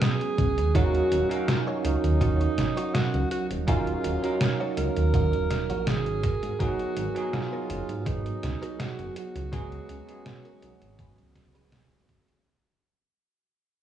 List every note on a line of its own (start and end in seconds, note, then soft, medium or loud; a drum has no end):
0.00 0.70 F#3 medium
0.00 0.70 G#3 medium
0.00 0.71 B3 medium
0.00 0.71 C#4 medium
0.00 0.72 G#4 medium
0.00 0.76 G#4 loud
0.00 snare loud
0.00 closed hi-hat medium
0.21 muted clean electric guitar stroke soft
0.21 closed hi-hat soft
0.38 0.59 C#2 medium
0.38 kick loud
0.38 closed hi-hat medium
0.58 1.01 D#2 medium
0.58 muted clean electric guitar stroke soft
0.58 closed hi-hat medium
0.74 1.26 F#3 loud
0.74 1.26 C#4 medium
0.74 1.21 D#4 loud
0.74 1.26 D#4 medium
0.74 1.21 F4 loud
0.74 1.48 F#4 loud
0.74 1.21 F#4 loud
0.74 1.26 A#4 loud
0.74 1.21 C#5 loud
0.74 1.26 F5 medium
0.74 kick loud
0.74 closed hi-hat medium
0.94 closed hi-hat soft
1.11 1.24 D#1 loud
1.11 closed hi-hat medium
1.29 3.63 F#3 loud
1.29 3.63 C#4 medium
1.29 3.63 D#4 medium
1.29 3.64 A#4 loud
1.29 3.64 F5 medium
1.29 closed hi-hat medium
1.48 1.64 F4 medium
1.48 snare loud
1.48 closed hi-hat medium
1.67 1.94 D#4 medium
1.67 1.94 F4 medium
1.67 1.94 F#4 medium
1.67 1.94 C#5 loud
1.85 1.97 C#2 loud
1.85 2.96 D#4 loud
1.85 closed hi-hat medium
2.04 2.48 D#2 loud
2.04 closed hi-hat medium
2.21 2.41 D#4 medium
2.21 2.41 F4 medium
2.21 2.41 F#4 medium
2.21 2.41 C#5 medium
2.21 kick loud
2.21 closed hi-hat medium
2.41 closed hi-hat soft
2.58 2.70 G#1 medium
2.58 muted clean electric guitar stroke soft
2.58 snare medium
2.58 closed hi-hat medium
2.77 2.94 D#4 medium
2.77 2.94 F4 medium
2.77 2.94 F#4 medium
2.77 2.94 C#5 loud
2.77 closed hi-hat medium
2.94 3.31 F#4 loud
2.94 snare loud
2.94 closed hi-hat medium
3.14 3.25 C#2 loud
3.14 muted clean electric guitar stroke soft
3.14 closed hi-hat soft
3.31 3.47 F#4 medium
3.31 closed hi-hat medium
3.50 3.94 D#1 medium
3.50 muted clean electric guitar stroke soft
3.50 closed hi-hat medium
3.67 4.18 F#3 loud
3.67 4.19 C#4 medium
3.67 4.14 D#4 loud
3.67 4.19 D#4 medium
3.67 4.47 F4 loud
3.67 4.14 F4 loud
3.67 4.14 F#4 loud
3.67 4.14 G#4 loud
3.67 4.19 A#4 loud
3.67 4.19 F5 medium
3.67 kick loud
3.67 closed hi-hat medium
3.87 closed hi-hat soft
4.04 4.16 D#1 loud
4.04 closed hi-hat medium
4.22 6.21 F#3 medium
4.22 6.21 C#4 medium
4.22 6.22 D#4 medium
4.22 6.22 A#4 medium
4.22 6.22 F5 medium
4.22 closed hi-hat medium
4.41 snare loud
4.41 closed hi-hat medium
4.60 4.87 D#4 medium
4.60 4.87 F4 medium
4.60 4.87 F#4 medium
4.60 4.87 C#5 medium
4.77 4.90 C#2 loud
4.77 5.89 A#4 loud
4.77 closed hi-hat medium
4.97 5.35 D#2 loud
4.97 closed hi-hat medium
5.14 5.33 D#4 medium
5.14 5.33 F4 medium
5.14 5.33 F#4 medium
5.14 5.33 D#5 loud
5.14 kick loud
5.14 closed hi-hat medium
5.33 5.69 D#1 medium
5.33 closed hi-hat soft
5.50 muted clean electric guitar stroke soft
5.50 snare medium
5.50 closed hi-hat medium
5.70 5.89 A#1 medium
5.70 5.87 D#4 medium
5.70 5.87 F4 medium
5.70 5.87 F#4 medium
5.70 5.87 C#5 loud
5.70 closed hi-hat soft
5.87 6.32 G#1 loud
5.87 6.62 G#4 loud
5.87 snare loud
5.87 closed hi-hat medium
6.06 muted clean electric guitar stroke soft
6.06 closed hi-hat soft
6.23 7.26 B3 medium
6.23 7.26 F#4 medium
6.23 7.26 G#4 medium
6.23 7.26 A#4 loud
6.23 kick loud
6.23 closed hi-hat medium
6.43 6.54 G#2 medium
6.43 closed hi-hat medium
6.59 7.11 F#3 loud
6.59 7.11 B3 medium
6.59 7.12 D#4 medium
6.59 7.35 F#4 loud
6.59 7.12 G#4 loud
6.59 7.11 A#4 medium
6.59 kick loud
6.59 closed hi-hat medium
6.80 closed hi-hat soft
6.97 7.09 G#1 loud
6.97 closed hi-hat medium
7.15 9.48 F#3 loud
7.15 9.49 B3 medium
7.15 9.49 D#4 medium
7.15 9.50 G#4 loud
7.15 closed hi-hat medium
7.33 8.08 F4 loud
7.33 snare loud
7.33 closed hi-hat medium
7.52 7.80 B3 medium
7.52 7.80 F#4 medium
7.52 7.80 G#4 medium
7.52 7.80 A#4 loud
7.70 7.82 F#1 loud
7.70 closed hi-hat medium
7.89 8.33 G#2 loud
7.89 closed hi-hat medium
8.06 8.26 B3 medium
8.06 8.81 D#4 medium
8.06 8.26 F#4 medium
8.06 8.26 G#4 medium
8.06 8.26 B4 medium
8.06 kick loud
8.06 closed hi-hat medium
8.26 closed hi-hat soft
8.43 8.55 C#2 medium
8.43 muted clean electric guitar stroke soft
8.43 snare medium
8.43 closed hi-hat medium
8.62 8.80 B3 medium
8.62 8.80 F#4 medium
8.62 8.80 G#4 medium
8.62 8.80 A#4 loud
8.62 closed hi-hat medium
8.80 9.16 F#4 medium
8.80 snare loud
8.80 closed hi-hat medium
8.99 9.10 F#1 medium
8.99 muted clean electric guitar stroke soft
8.99 closed hi-hat soft
9.16 11.69 F#4 loud
9.16 closed hi-hat medium
9.35 9.79 C#2 medium
9.35 muted clean electric guitar stroke soft
9.35 closed hi-hat medium
9.52 10.04 F#3 loud
9.52 10.04 G#3 medium
9.52 10.04 B3 medium
9.52 9.99 C#4 loud
9.52 10.04 C#4 medium
9.52 9.99 F#4 loud
9.52 9.99 G#4 loud
9.52 10.04 G#4 loud
9.52 9.99 B4 loud
9.52 kick loud
9.52 closed hi-hat medium
9.72 closed hi-hat soft
9.89 10.02 C#2 loud
9.89 closed hi-hat medium
10.07 12.41 F#3 medium
10.07 12.41 G#3 medium
10.07 12.41 B3 medium
10.07 12.42 C#4 medium
10.07 12.42 G#4 medium
10.07 closed hi-hat medium
10.26 snare loud
10.26 closed hi-hat medium
10.45 10.72 C#4 medium
10.45 10.72 F#4 medium
10.45 10.72 G#4 medium
10.45 10.72 A#4 loud
10.45 closed hi-hat soft
10.62 10.75 B1 loud
10.62 closed hi-hat medium
10.82 11.20 G#1 loud
10.82 closed hi-hat medium
10.99 11.18 C#4 loud
10.99 11.18 F#4 medium
10.99 11.18 G#4 medium
10.99 11.18 B4 loud
10.99 kick loud
10.99 closed hi-hat medium
11.18 11.93 C#2 medium
11.18 closed hi-hat soft
11.35 muted clean electric guitar stroke soft
11.35 kick medium
11.35 snare medium
11.35 closed hi-hat medium
11.54 11.72 C#4 medium
11.54 11.72 F#4 medium
11.54 11.72 G#4 medium
11.54 11.72 B4 loud
11.54 closed hi-hat medium
11.72 snare loud
11.72 closed hi-hat medium
11.91 12.03 B1 medium
11.91 muted clean electric guitar stroke soft
11.91 closed hi-hat soft
12.09 kick loud
12.09 closed hi-hat medium
12.28 muted clean electric guitar stroke soft
12.28 closed hi-hat medium